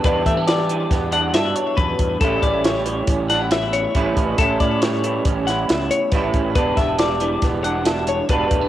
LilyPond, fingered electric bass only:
\new Staff \with { instrumentName = "Fingered electric bass" } { \clef bass \time 5/4 \key e \dorian \tempo 4 = 138 e,8 e4. e,4 g,8 r8 e,8 e,8 | a,,8 a,,4. a,,2 a,,8 a,,8 | a,,8 a,4. a,,4 cis,8 r8 a,,8 a,,8 | e,,8 e,,4. e,,2 e,,8 e,,8 | }